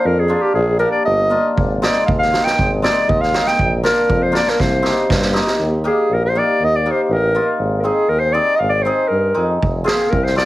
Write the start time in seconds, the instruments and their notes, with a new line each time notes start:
0.05 tuba F2, clarinet A#4
0.19 clarinet G#4
0.28 hammered dulcimer A#3 D4 F4
0.42 clarinet G4
0.55 tuba A#1, clarinet G#4
0.79 hammered dulcimer A#3 D4 G4, clarinet A#4
0.92 clarinet D5
1.05 tuba G1, clarinet D#5
1.30 hammered dulcimer A#3 D4 F4
1.57 tuba G#1, kick
1.82 hammered dulcimer G#3 C4 D#4, clarinet D5, snare
2.06 tuba D#2, clarinet F5, kick
2.18 clarinet F5, snare
2.32 hammered dulcimer G#3 C4 D#4, snare
2.45 clarinet G5, snare
2.59 tuba G#1, kick
2.82 hammered dulcimer G#3 C4 D#4, clarinet D5, snare
3.08 tuba D#2, clarinet D#5, kick
3.21 clarinet F5, snare
3.34 hammered dulcimer G#3 C4 D#4, snare
3.47 clarinet G5, snare
3.59 tuba A#1, kick
3.83 hammered dulcimer A#3 D4 F4, clarinet A#4, snare
4.09 tuba F2, kick
4.23 clarinet C5
4.32 hammered dulcimer A#3 D4 F4, snare
4.37 clarinet D5
4.47 clarinet A#4, snare
4.59 tuba C2, clarinet C5, kick, snare
4.82 hammered dulcimer C4 D#4 G4, snare
5.10 tuba G2, kick, snare
5.22 snare
5.33 hammered dulcimer C4 D#4 G4, snare
5.47 snare
5.59 tuba D#2
5.84 hammered dulcimer A#3 D#4 G4, clarinet G#4
6.09 tuba A#1
6.14 clarinet A#4
6.26 clarinet C5
6.35 hammered dulcimer A#3 D#4 G4, clarinet D5
6.60 tuba D#2
6.64 clarinet D#5
6.76 clarinet D5
6.86 hammered dulcimer A#3 D#4 G4
6.91 clarinet C5
7.04 clarinet C5
7.09 tuba A1, clarinet A#4
7.35 hammered dulcimer A#3 D#4 F4
7.59 tuba G#1
7.79 clarinet A#4
7.84 hammered dulcimer C4 D#4 G#4, clarinet G#4
8.09 tuba D#2, clarinet A#4
8.20 clarinet C5
8.33 hammered dulcimer C4 D#4 G#4, clarinet D5
8.56 tuba G#1, clarinet D#5 F5
8.70 clarinet D5
8.82 hammered dulcimer C4 D#4, clarinet C5
8.86 hammered dulcimer G#4
9.08 tuba G2, clarinet A#4
9.34 tuba F2, hammered dulcimer C4 D#4 G#4
9.62 tuba F1, kick
9.84 hammered dulcimer C4 F4 G#4, clarinet G#4, snare
10.10 tuba C2, clarinet A#4, kick
10.25 clarinet C5, snare
10.36 hammered dulcimer C4 F4 G#4, clarinet D5, snare